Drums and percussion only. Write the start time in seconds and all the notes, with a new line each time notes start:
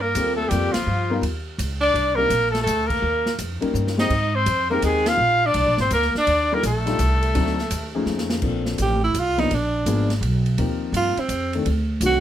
0.15 hi-hat pedal, ride
0.51 hi-hat pedal, ride
0.74 snare, ride
1.23 ride
1.59 hi-hat pedal, ride
1.95 ride
2.30 hi-hat pedal, ride
2.55 snare, ride
2.67 hi-hat pedal, ride
2.90 kick, crash
3.26 snare
3.39 hi-hat pedal, ride
3.62 ride
3.75 hi-hat pedal
3.87 snare
3.98 snare
4.10 kick, crash
4.46 hi-hat pedal, ride
4.82 hi-hat pedal, ride
5.06 snare, ride
5.54 ride
5.78 snare
5.90 hi-hat pedal, ride
6.02 snare
6.15 snare
6.27 ride
6.63 hi-hat pedal, ride
6.87 snare, ride
6.99 hi-hat pedal, ride
7.23 ride
7.35 ride
7.47 snare
7.59 snare
7.71 hi-hat pedal, ride
8.06 snare
8.18 snare
8.30 snare
8.42 kick, crash
8.66 snare
8.78 hi-hat pedal, ride
9.14 hi-hat pedal, ride
9.38 ride
9.51 ride
9.86 hi-hat pedal, ride
10.10 snare, ride
10.23 ride
10.46 ride
10.58 ride
10.94 hi-hat pedal, ride
11.17 ride
11.29 hi-hat pedal, ride
11.53 ride
11.66 ride
12.01 hi-hat pedal, ride